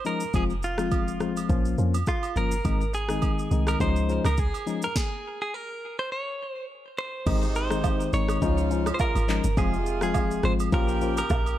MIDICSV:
0, 0, Header, 1, 6, 480
1, 0, Start_track
1, 0, Key_signature, -4, "major"
1, 0, Tempo, 576923
1, 284, Time_signature, 4, 2, 24, 8
1, 9638, End_track
2, 0, Start_track
2, 0, Title_t, "Clean electric guitar"
2, 0, Program_c, 0, 27
2, 54, Note_on_c, 0, 70, 90
2, 293, Note_off_c, 0, 70, 0
2, 296, Note_on_c, 0, 68, 95
2, 359, Note_off_c, 0, 68, 0
2, 534, Note_on_c, 0, 65, 72
2, 1456, Note_off_c, 0, 65, 0
2, 1735, Note_on_c, 0, 65, 79
2, 1974, Note_on_c, 0, 70, 92
2, 1976, Note_off_c, 0, 65, 0
2, 2447, Note_off_c, 0, 70, 0
2, 2451, Note_on_c, 0, 68, 88
2, 3061, Note_off_c, 0, 68, 0
2, 3064, Note_on_c, 0, 70, 84
2, 3166, Note_off_c, 0, 70, 0
2, 3170, Note_on_c, 0, 72, 98
2, 3513, Note_off_c, 0, 72, 0
2, 3545, Note_on_c, 0, 70, 91
2, 3656, Note_off_c, 0, 70, 0
2, 3656, Note_on_c, 0, 68, 96
2, 4024, Note_off_c, 0, 68, 0
2, 4028, Note_on_c, 0, 70, 92
2, 4133, Note_off_c, 0, 70, 0
2, 4133, Note_on_c, 0, 68, 101
2, 4498, Note_off_c, 0, 68, 0
2, 4508, Note_on_c, 0, 68, 87
2, 4611, Note_off_c, 0, 68, 0
2, 4611, Note_on_c, 0, 70, 93
2, 4982, Note_off_c, 0, 70, 0
2, 4985, Note_on_c, 0, 72, 94
2, 5081, Note_off_c, 0, 72, 0
2, 5093, Note_on_c, 0, 73, 96
2, 5409, Note_off_c, 0, 73, 0
2, 5409, Note_on_c, 0, 72, 96
2, 5535, Note_off_c, 0, 72, 0
2, 5812, Note_on_c, 0, 72, 104
2, 6281, Note_off_c, 0, 72, 0
2, 6291, Note_on_c, 0, 72, 97
2, 6768, Note_off_c, 0, 72, 0
2, 6771, Note_on_c, 0, 73, 110
2, 7438, Note_off_c, 0, 73, 0
2, 7441, Note_on_c, 0, 72, 72
2, 7489, Note_off_c, 0, 72, 0
2, 7494, Note_on_c, 0, 70, 98
2, 7974, Note_on_c, 0, 68, 99
2, 7983, Note_off_c, 0, 70, 0
2, 8336, Note_off_c, 0, 68, 0
2, 8346, Note_on_c, 0, 68, 93
2, 8694, Note_on_c, 0, 72, 105
2, 8699, Note_off_c, 0, 68, 0
2, 8757, Note_off_c, 0, 72, 0
2, 8935, Note_on_c, 0, 70, 103
2, 9295, Note_off_c, 0, 70, 0
2, 9305, Note_on_c, 0, 70, 101
2, 9638, Note_off_c, 0, 70, 0
2, 9638, End_track
3, 0, Start_track
3, 0, Title_t, "Tine electric piano"
3, 0, Program_c, 1, 4
3, 41, Note_on_c, 1, 53, 75
3, 43, Note_on_c, 1, 56, 67
3, 44, Note_on_c, 1, 61, 69
3, 46, Note_on_c, 1, 63, 85
3, 186, Note_off_c, 1, 53, 0
3, 187, Note_off_c, 1, 56, 0
3, 188, Note_off_c, 1, 61, 0
3, 189, Note_off_c, 1, 63, 0
3, 283, Note_on_c, 1, 53, 90
3, 285, Note_on_c, 1, 56, 80
3, 287, Note_on_c, 1, 60, 84
3, 289, Note_on_c, 1, 65, 97
3, 427, Note_off_c, 1, 53, 0
3, 428, Note_off_c, 1, 56, 0
3, 429, Note_off_c, 1, 60, 0
3, 430, Note_off_c, 1, 65, 0
3, 653, Note_on_c, 1, 53, 73
3, 655, Note_on_c, 1, 56, 66
3, 656, Note_on_c, 1, 60, 69
3, 658, Note_on_c, 1, 65, 85
3, 976, Note_off_c, 1, 53, 0
3, 978, Note_off_c, 1, 56, 0
3, 978, Note_off_c, 1, 60, 0
3, 979, Note_off_c, 1, 65, 0
3, 999, Note_on_c, 1, 53, 72
3, 1001, Note_on_c, 1, 56, 66
3, 1003, Note_on_c, 1, 60, 64
3, 1004, Note_on_c, 1, 65, 76
3, 1224, Note_off_c, 1, 53, 0
3, 1225, Note_off_c, 1, 56, 0
3, 1226, Note_off_c, 1, 60, 0
3, 1227, Note_off_c, 1, 65, 0
3, 1240, Note_on_c, 1, 53, 90
3, 1241, Note_on_c, 1, 58, 86
3, 1244, Note_on_c, 1, 61, 86
3, 1244, Note_on_c, 1, 65, 99
3, 1464, Note_off_c, 1, 53, 0
3, 1465, Note_off_c, 1, 58, 0
3, 1466, Note_off_c, 1, 61, 0
3, 1466, Note_off_c, 1, 65, 0
3, 1483, Note_on_c, 1, 53, 74
3, 1484, Note_on_c, 1, 58, 66
3, 1486, Note_on_c, 1, 61, 73
3, 1487, Note_on_c, 1, 65, 80
3, 1627, Note_off_c, 1, 53, 0
3, 1628, Note_off_c, 1, 58, 0
3, 1629, Note_off_c, 1, 61, 0
3, 1629, Note_off_c, 1, 65, 0
3, 1962, Note_on_c, 1, 53, 78
3, 1965, Note_on_c, 1, 58, 70
3, 1966, Note_on_c, 1, 61, 67
3, 1967, Note_on_c, 1, 65, 85
3, 2107, Note_off_c, 1, 53, 0
3, 2108, Note_off_c, 1, 58, 0
3, 2109, Note_off_c, 1, 61, 0
3, 2109, Note_off_c, 1, 65, 0
3, 2202, Note_on_c, 1, 51, 90
3, 2204, Note_on_c, 1, 56, 84
3, 2206, Note_on_c, 1, 60, 82
3, 2207, Note_on_c, 1, 63, 97
3, 2347, Note_off_c, 1, 51, 0
3, 2348, Note_off_c, 1, 56, 0
3, 2349, Note_off_c, 1, 60, 0
3, 2349, Note_off_c, 1, 63, 0
3, 2574, Note_on_c, 1, 51, 74
3, 2576, Note_on_c, 1, 56, 66
3, 2578, Note_on_c, 1, 60, 69
3, 2579, Note_on_c, 1, 63, 84
3, 2897, Note_off_c, 1, 51, 0
3, 2898, Note_off_c, 1, 56, 0
3, 2899, Note_off_c, 1, 60, 0
3, 2899, Note_off_c, 1, 63, 0
3, 2923, Note_on_c, 1, 51, 73
3, 2924, Note_on_c, 1, 56, 68
3, 2925, Note_on_c, 1, 60, 66
3, 2926, Note_on_c, 1, 63, 81
3, 3146, Note_off_c, 1, 51, 0
3, 3146, Note_off_c, 1, 56, 0
3, 3147, Note_off_c, 1, 60, 0
3, 3148, Note_off_c, 1, 63, 0
3, 3160, Note_on_c, 1, 53, 92
3, 3163, Note_on_c, 1, 56, 86
3, 3163, Note_on_c, 1, 61, 87
3, 3167, Note_on_c, 1, 63, 105
3, 3385, Note_off_c, 1, 53, 0
3, 3386, Note_off_c, 1, 56, 0
3, 3386, Note_off_c, 1, 61, 0
3, 3388, Note_off_c, 1, 63, 0
3, 3402, Note_on_c, 1, 53, 76
3, 3403, Note_on_c, 1, 56, 70
3, 3405, Note_on_c, 1, 61, 69
3, 3408, Note_on_c, 1, 63, 83
3, 3547, Note_off_c, 1, 53, 0
3, 3547, Note_off_c, 1, 56, 0
3, 3548, Note_off_c, 1, 61, 0
3, 3550, Note_off_c, 1, 63, 0
3, 3881, Note_on_c, 1, 53, 76
3, 3883, Note_on_c, 1, 56, 70
3, 3884, Note_on_c, 1, 61, 71
3, 3887, Note_on_c, 1, 63, 83
3, 4026, Note_off_c, 1, 53, 0
3, 4027, Note_off_c, 1, 56, 0
3, 4028, Note_off_c, 1, 61, 0
3, 4029, Note_off_c, 1, 63, 0
3, 6042, Note_on_c, 1, 51, 93
3, 6044, Note_on_c, 1, 56, 86
3, 6045, Note_on_c, 1, 60, 85
3, 6047, Note_on_c, 1, 63, 102
3, 6187, Note_off_c, 1, 51, 0
3, 6188, Note_off_c, 1, 56, 0
3, 6188, Note_off_c, 1, 60, 0
3, 6189, Note_off_c, 1, 63, 0
3, 6414, Note_on_c, 1, 51, 77
3, 6416, Note_on_c, 1, 56, 69
3, 6417, Note_on_c, 1, 60, 71
3, 6418, Note_on_c, 1, 63, 84
3, 6737, Note_off_c, 1, 51, 0
3, 6738, Note_off_c, 1, 56, 0
3, 6738, Note_off_c, 1, 60, 0
3, 6739, Note_off_c, 1, 63, 0
3, 6761, Note_on_c, 1, 51, 75
3, 6764, Note_on_c, 1, 56, 70
3, 6765, Note_on_c, 1, 60, 68
3, 6767, Note_on_c, 1, 63, 83
3, 6985, Note_off_c, 1, 51, 0
3, 6987, Note_off_c, 1, 56, 0
3, 6987, Note_off_c, 1, 60, 0
3, 6988, Note_off_c, 1, 63, 0
3, 7002, Note_on_c, 1, 53, 99
3, 7004, Note_on_c, 1, 56, 89
3, 7005, Note_on_c, 1, 61, 91
3, 7007, Note_on_c, 1, 63, 110
3, 7226, Note_off_c, 1, 53, 0
3, 7226, Note_off_c, 1, 56, 0
3, 7227, Note_off_c, 1, 61, 0
3, 7228, Note_off_c, 1, 63, 0
3, 7242, Note_on_c, 1, 53, 77
3, 7243, Note_on_c, 1, 56, 71
3, 7245, Note_on_c, 1, 61, 75
3, 7246, Note_on_c, 1, 63, 87
3, 7387, Note_off_c, 1, 53, 0
3, 7387, Note_off_c, 1, 56, 0
3, 7388, Note_off_c, 1, 61, 0
3, 7389, Note_off_c, 1, 63, 0
3, 7723, Note_on_c, 1, 53, 79
3, 7724, Note_on_c, 1, 56, 72
3, 7726, Note_on_c, 1, 61, 75
3, 7727, Note_on_c, 1, 63, 87
3, 7867, Note_off_c, 1, 53, 0
3, 7868, Note_off_c, 1, 56, 0
3, 7869, Note_off_c, 1, 61, 0
3, 7869, Note_off_c, 1, 63, 0
3, 7961, Note_on_c, 1, 53, 94
3, 7962, Note_on_c, 1, 56, 84
3, 7964, Note_on_c, 1, 60, 85
3, 7965, Note_on_c, 1, 65, 98
3, 8106, Note_off_c, 1, 53, 0
3, 8107, Note_off_c, 1, 56, 0
3, 8108, Note_off_c, 1, 60, 0
3, 8108, Note_off_c, 1, 65, 0
3, 8334, Note_on_c, 1, 53, 77
3, 8336, Note_on_c, 1, 56, 74
3, 8337, Note_on_c, 1, 60, 72
3, 8338, Note_on_c, 1, 65, 89
3, 8657, Note_off_c, 1, 53, 0
3, 8658, Note_off_c, 1, 56, 0
3, 8658, Note_off_c, 1, 60, 0
3, 8659, Note_off_c, 1, 65, 0
3, 8680, Note_on_c, 1, 53, 75
3, 8682, Note_on_c, 1, 56, 69
3, 8685, Note_on_c, 1, 60, 67
3, 8687, Note_on_c, 1, 65, 81
3, 8905, Note_off_c, 1, 53, 0
3, 8906, Note_off_c, 1, 56, 0
3, 8907, Note_off_c, 1, 60, 0
3, 8908, Note_off_c, 1, 65, 0
3, 8922, Note_on_c, 1, 53, 94
3, 8924, Note_on_c, 1, 58, 94
3, 8926, Note_on_c, 1, 61, 92
3, 8928, Note_on_c, 1, 65, 109
3, 9145, Note_off_c, 1, 53, 0
3, 9147, Note_off_c, 1, 58, 0
3, 9147, Note_off_c, 1, 61, 0
3, 9148, Note_off_c, 1, 65, 0
3, 9164, Note_on_c, 1, 53, 78
3, 9165, Note_on_c, 1, 58, 73
3, 9166, Note_on_c, 1, 61, 73
3, 9168, Note_on_c, 1, 65, 88
3, 9308, Note_off_c, 1, 53, 0
3, 9309, Note_off_c, 1, 58, 0
3, 9309, Note_off_c, 1, 61, 0
3, 9310, Note_off_c, 1, 65, 0
3, 9638, End_track
4, 0, Start_track
4, 0, Title_t, "Horn section"
4, 0, Program_c, 2, 61
4, 6045, Note_on_c, 2, 63, 93
4, 6047, Note_on_c, 2, 48, 82
4, 6047, Note_on_c, 2, 56, 80
4, 6750, Note_off_c, 2, 63, 0
4, 6751, Note_off_c, 2, 48, 0
4, 6751, Note_off_c, 2, 56, 0
4, 7005, Note_on_c, 2, 56, 82
4, 7006, Note_on_c, 2, 49, 83
4, 7006, Note_on_c, 2, 65, 94
4, 7710, Note_off_c, 2, 49, 0
4, 7710, Note_off_c, 2, 56, 0
4, 7711, Note_off_c, 2, 65, 0
4, 7964, Note_on_c, 2, 48, 79
4, 7964, Note_on_c, 2, 65, 91
4, 7965, Note_on_c, 2, 56, 83
4, 8669, Note_off_c, 2, 48, 0
4, 8670, Note_off_c, 2, 56, 0
4, 8670, Note_off_c, 2, 65, 0
4, 8925, Note_on_c, 2, 67, 95
4, 8926, Note_on_c, 2, 49, 82
4, 8926, Note_on_c, 2, 58, 84
4, 9630, Note_off_c, 2, 49, 0
4, 9630, Note_off_c, 2, 67, 0
4, 9631, Note_off_c, 2, 58, 0
4, 9638, End_track
5, 0, Start_track
5, 0, Title_t, "Log drum bass"
5, 0, Program_c, 3, 39
5, 282, Note_on_c, 3, 29, 98
5, 1003, Note_on_c, 3, 32, 91
5, 1016, Note_off_c, 3, 29, 0
5, 1213, Note_off_c, 3, 32, 0
5, 1245, Note_on_c, 3, 34, 106
5, 1454, Note_off_c, 3, 34, 0
5, 1483, Note_on_c, 3, 41, 95
5, 1693, Note_off_c, 3, 41, 0
5, 1964, Note_on_c, 3, 31, 92
5, 2174, Note_off_c, 3, 31, 0
5, 2204, Note_on_c, 3, 32, 107
5, 2891, Note_off_c, 3, 32, 0
5, 2922, Note_on_c, 3, 36, 99
5, 3132, Note_off_c, 3, 36, 0
5, 3165, Note_on_c, 3, 37, 112
5, 3489, Note_off_c, 3, 37, 0
5, 3535, Note_on_c, 3, 37, 109
5, 3745, Note_off_c, 3, 37, 0
5, 6045, Note_on_c, 3, 32, 113
5, 6731, Note_off_c, 3, 32, 0
5, 6765, Note_on_c, 3, 32, 97
5, 6974, Note_off_c, 3, 32, 0
5, 7005, Note_on_c, 3, 37, 99
5, 7424, Note_off_c, 3, 37, 0
5, 7615, Note_on_c, 3, 32, 93
5, 7825, Note_off_c, 3, 32, 0
5, 7857, Note_on_c, 3, 31, 99
5, 7951, Note_off_c, 3, 31, 0
5, 7964, Note_on_c, 3, 29, 115
5, 8651, Note_off_c, 3, 29, 0
5, 8682, Note_on_c, 3, 32, 91
5, 8893, Note_off_c, 3, 32, 0
5, 8923, Note_on_c, 3, 34, 102
5, 9343, Note_off_c, 3, 34, 0
5, 9404, Note_on_c, 3, 34, 97
5, 9613, Note_off_c, 3, 34, 0
5, 9638, End_track
6, 0, Start_track
6, 0, Title_t, "Drums"
6, 43, Note_on_c, 9, 82, 54
6, 126, Note_off_c, 9, 82, 0
6, 168, Note_on_c, 9, 82, 100
6, 251, Note_off_c, 9, 82, 0
6, 281, Note_on_c, 9, 82, 77
6, 283, Note_on_c, 9, 36, 111
6, 286, Note_on_c, 9, 67, 75
6, 364, Note_off_c, 9, 82, 0
6, 366, Note_off_c, 9, 36, 0
6, 369, Note_off_c, 9, 67, 0
6, 416, Note_on_c, 9, 82, 47
6, 499, Note_off_c, 9, 82, 0
6, 522, Note_on_c, 9, 82, 61
6, 605, Note_off_c, 9, 82, 0
6, 648, Note_on_c, 9, 37, 114
6, 655, Note_on_c, 9, 82, 90
6, 731, Note_off_c, 9, 37, 0
6, 738, Note_off_c, 9, 82, 0
6, 761, Note_on_c, 9, 82, 81
6, 762, Note_on_c, 9, 36, 95
6, 762, Note_on_c, 9, 67, 76
6, 844, Note_off_c, 9, 82, 0
6, 845, Note_off_c, 9, 36, 0
6, 845, Note_off_c, 9, 67, 0
6, 898, Note_on_c, 9, 82, 57
6, 981, Note_off_c, 9, 82, 0
6, 1001, Note_on_c, 9, 82, 48
6, 1002, Note_on_c, 9, 37, 92
6, 1085, Note_off_c, 9, 82, 0
6, 1086, Note_off_c, 9, 37, 0
6, 1137, Note_on_c, 9, 82, 85
6, 1143, Note_on_c, 9, 67, 74
6, 1220, Note_off_c, 9, 82, 0
6, 1226, Note_off_c, 9, 67, 0
6, 1244, Note_on_c, 9, 36, 113
6, 1244, Note_on_c, 9, 82, 76
6, 1327, Note_off_c, 9, 82, 0
6, 1328, Note_off_c, 9, 36, 0
6, 1375, Note_on_c, 9, 82, 54
6, 1458, Note_off_c, 9, 82, 0
6, 1482, Note_on_c, 9, 82, 47
6, 1566, Note_off_c, 9, 82, 0
6, 1616, Note_on_c, 9, 82, 85
6, 1618, Note_on_c, 9, 67, 84
6, 1699, Note_off_c, 9, 82, 0
6, 1701, Note_off_c, 9, 67, 0
6, 1719, Note_on_c, 9, 82, 70
6, 1725, Note_on_c, 9, 36, 88
6, 1726, Note_on_c, 9, 37, 91
6, 1803, Note_off_c, 9, 82, 0
6, 1808, Note_off_c, 9, 36, 0
6, 1809, Note_off_c, 9, 37, 0
6, 1855, Note_on_c, 9, 67, 78
6, 1862, Note_on_c, 9, 82, 54
6, 1938, Note_off_c, 9, 67, 0
6, 1945, Note_off_c, 9, 82, 0
6, 1965, Note_on_c, 9, 82, 52
6, 2048, Note_off_c, 9, 82, 0
6, 2092, Note_on_c, 9, 82, 98
6, 2175, Note_off_c, 9, 82, 0
6, 2204, Note_on_c, 9, 36, 111
6, 2204, Note_on_c, 9, 67, 72
6, 2204, Note_on_c, 9, 82, 76
6, 2287, Note_off_c, 9, 36, 0
6, 2287, Note_off_c, 9, 67, 0
6, 2287, Note_off_c, 9, 82, 0
6, 2338, Note_on_c, 9, 82, 47
6, 2421, Note_off_c, 9, 82, 0
6, 2443, Note_on_c, 9, 82, 65
6, 2526, Note_off_c, 9, 82, 0
6, 2568, Note_on_c, 9, 37, 117
6, 2575, Note_on_c, 9, 82, 89
6, 2651, Note_off_c, 9, 37, 0
6, 2658, Note_off_c, 9, 82, 0
6, 2678, Note_on_c, 9, 67, 77
6, 2682, Note_on_c, 9, 36, 97
6, 2682, Note_on_c, 9, 82, 77
6, 2761, Note_off_c, 9, 67, 0
6, 2765, Note_off_c, 9, 82, 0
6, 2766, Note_off_c, 9, 36, 0
6, 2818, Note_on_c, 9, 82, 57
6, 2902, Note_off_c, 9, 82, 0
6, 2922, Note_on_c, 9, 82, 50
6, 3005, Note_off_c, 9, 82, 0
6, 3052, Note_on_c, 9, 37, 98
6, 3057, Note_on_c, 9, 82, 84
6, 3060, Note_on_c, 9, 67, 75
6, 3135, Note_off_c, 9, 37, 0
6, 3140, Note_off_c, 9, 82, 0
6, 3143, Note_off_c, 9, 67, 0
6, 3165, Note_on_c, 9, 36, 117
6, 3165, Note_on_c, 9, 82, 75
6, 3248, Note_off_c, 9, 36, 0
6, 3248, Note_off_c, 9, 82, 0
6, 3295, Note_on_c, 9, 82, 53
6, 3378, Note_off_c, 9, 82, 0
6, 3404, Note_on_c, 9, 82, 45
6, 3487, Note_off_c, 9, 82, 0
6, 3532, Note_on_c, 9, 37, 92
6, 3536, Note_on_c, 9, 82, 89
6, 3538, Note_on_c, 9, 67, 84
6, 3615, Note_off_c, 9, 37, 0
6, 3620, Note_off_c, 9, 82, 0
6, 3621, Note_off_c, 9, 67, 0
6, 3640, Note_on_c, 9, 82, 76
6, 3645, Note_on_c, 9, 36, 86
6, 3723, Note_off_c, 9, 82, 0
6, 3728, Note_off_c, 9, 36, 0
6, 3779, Note_on_c, 9, 67, 76
6, 3782, Note_on_c, 9, 82, 52
6, 3862, Note_off_c, 9, 67, 0
6, 3866, Note_off_c, 9, 82, 0
6, 3886, Note_on_c, 9, 82, 55
6, 3969, Note_off_c, 9, 82, 0
6, 4011, Note_on_c, 9, 82, 100
6, 4095, Note_off_c, 9, 82, 0
6, 4124, Note_on_c, 9, 36, 111
6, 4124, Note_on_c, 9, 38, 87
6, 4208, Note_off_c, 9, 36, 0
6, 4208, Note_off_c, 9, 38, 0
6, 6045, Note_on_c, 9, 36, 113
6, 6045, Note_on_c, 9, 49, 96
6, 6045, Note_on_c, 9, 67, 76
6, 6045, Note_on_c, 9, 82, 78
6, 6128, Note_off_c, 9, 36, 0
6, 6128, Note_off_c, 9, 82, 0
6, 6129, Note_off_c, 9, 49, 0
6, 6129, Note_off_c, 9, 67, 0
6, 6178, Note_on_c, 9, 82, 50
6, 6261, Note_off_c, 9, 82, 0
6, 6285, Note_on_c, 9, 82, 63
6, 6368, Note_off_c, 9, 82, 0
6, 6410, Note_on_c, 9, 37, 116
6, 6417, Note_on_c, 9, 82, 90
6, 6493, Note_off_c, 9, 37, 0
6, 6500, Note_off_c, 9, 82, 0
6, 6520, Note_on_c, 9, 67, 74
6, 6520, Note_on_c, 9, 77, 80
6, 6523, Note_on_c, 9, 82, 81
6, 6524, Note_on_c, 9, 36, 92
6, 6604, Note_off_c, 9, 67, 0
6, 6604, Note_off_c, 9, 77, 0
6, 6606, Note_off_c, 9, 82, 0
6, 6607, Note_off_c, 9, 36, 0
6, 6660, Note_on_c, 9, 82, 57
6, 6743, Note_off_c, 9, 82, 0
6, 6764, Note_on_c, 9, 82, 50
6, 6847, Note_off_c, 9, 82, 0
6, 6893, Note_on_c, 9, 37, 101
6, 6898, Note_on_c, 9, 82, 87
6, 6901, Note_on_c, 9, 67, 73
6, 6976, Note_off_c, 9, 37, 0
6, 6981, Note_off_c, 9, 82, 0
6, 6984, Note_off_c, 9, 67, 0
6, 7005, Note_on_c, 9, 36, 117
6, 7006, Note_on_c, 9, 82, 76
6, 7089, Note_off_c, 9, 36, 0
6, 7089, Note_off_c, 9, 82, 0
6, 7137, Note_on_c, 9, 82, 56
6, 7220, Note_off_c, 9, 82, 0
6, 7245, Note_on_c, 9, 82, 49
6, 7328, Note_off_c, 9, 82, 0
6, 7373, Note_on_c, 9, 37, 97
6, 7377, Note_on_c, 9, 82, 92
6, 7378, Note_on_c, 9, 67, 88
6, 7456, Note_off_c, 9, 37, 0
6, 7460, Note_off_c, 9, 82, 0
6, 7461, Note_off_c, 9, 67, 0
6, 7481, Note_on_c, 9, 82, 77
6, 7485, Note_on_c, 9, 77, 85
6, 7486, Note_on_c, 9, 36, 92
6, 7564, Note_off_c, 9, 82, 0
6, 7568, Note_off_c, 9, 77, 0
6, 7569, Note_off_c, 9, 36, 0
6, 7617, Note_on_c, 9, 67, 79
6, 7623, Note_on_c, 9, 82, 56
6, 7700, Note_off_c, 9, 67, 0
6, 7706, Note_off_c, 9, 82, 0
6, 7727, Note_on_c, 9, 82, 54
6, 7731, Note_on_c, 9, 39, 90
6, 7810, Note_off_c, 9, 82, 0
6, 7815, Note_off_c, 9, 39, 0
6, 7853, Note_on_c, 9, 82, 105
6, 7936, Note_off_c, 9, 82, 0
6, 7964, Note_on_c, 9, 36, 117
6, 7965, Note_on_c, 9, 82, 78
6, 7966, Note_on_c, 9, 67, 73
6, 8048, Note_off_c, 9, 36, 0
6, 8048, Note_off_c, 9, 82, 0
6, 8049, Note_off_c, 9, 67, 0
6, 8099, Note_on_c, 9, 82, 49
6, 8183, Note_off_c, 9, 82, 0
6, 8205, Note_on_c, 9, 82, 63
6, 8288, Note_off_c, 9, 82, 0
6, 8330, Note_on_c, 9, 37, 120
6, 8337, Note_on_c, 9, 82, 94
6, 8413, Note_off_c, 9, 37, 0
6, 8420, Note_off_c, 9, 82, 0
6, 8438, Note_on_c, 9, 67, 77
6, 8438, Note_on_c, 9, 77, 79
6, 8442, Note_on_c, 9, 36, 94
6, 8442, Note_on_c, 9, 82, 78
6, 8522, Note_off_c, 9, 67, 0
6, 8522, Note_off_c, 9, 77, 0
6, 8525, Note_off_c, 9, 82, 0
6, 8526, Note_off_c, 9, 36, 0
6, 8578, Note_on_c, 9, 82, 56
6, 8661, Note_off_c, 9, 82, 0
6, 8680, Note_on_c, 9, 82, 51
6, 8681, Note_on_c, 9, 37, 97
6, 8763, Note_off_c, 9, 82, 0
6, 8764, Note_off_c, 9, 37, 0
6, 8815, Note_on_c, 9, 82, 87
6, 8821, Note_on_c, 9, 67, 78
6, 8898, Note_off_c, 9, 82, 0
6, 8904, Note_off_c, 9, 67, 0
6, 8922, Note_on_c, 9, 82, 78
6, 8923, Note_on_c, 9, 36, 121
6, 9005, Note_off_c, 9, 82, 0
6, 9006, Note_off_c, 9, 36, 0
6, 9054, Note_on_c, 9, 82, 57
6, 9137, Note_off_c, 9, 82, 0
6, 9162, Note_on_c, 9, 82, 50
6, 9245, Note_off_c, 9, 82, 0
6, 9295, Note_on_c, 9, 82, 90
6, 9297, Note_on_c, 9, 67, 84
6, 9378, Note_off_c, 9, 82, 0
6, 9381, Note_off_c, 9, 67, 0
6, 9398, Note_on_c, 9, 82, 77
6, 9404, Note_on_c, 9, 36, 91
6, 9405, Note_on_c, 9, 37, 88
6, 9406, Note_on_c, 9, 77, 86
6, 9481, Note_off_c, 9, 82, 0
6, 9487, Note_off_c, 9, 36, 0
6, 9488, Note_off_c, 9, 37, 0
6, 9489, Note_off_c, 9, 77, 0
6, 9538, Note_on_c, 9, 67, 79
6, 9541, Note_on_c, 9, 82, 54
6, 9621, Note_off_c, 9, 67, 0
6, 9624, Note_off_c, 9, 82, 0
6, 9638, End_track
0, 0, End_of_file